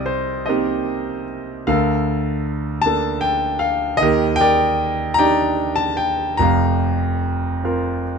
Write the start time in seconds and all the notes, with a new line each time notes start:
Already playing: C2 C3 G4 A#4 D5 D#5
0.06 C5
0.46 A#3 C4 D#4 G4 D#5
0.50 A#4
1.67 D2 D3 A4 A#4 F5
2.82 A5
2.86 A#3 D4 A4
3.21 G5
3.59 F5
3.97 D#3 D#5
4.02 D#2 G4 A#4
4.36 G5
4.41 A#4 D5
5.14 A#5
5.19 D4 D#4 G4 D5 G5
5.76 A5
5.97 G5
6.37 F1 F2 A#5
6.42 F5
7.64 C4 F4 A#4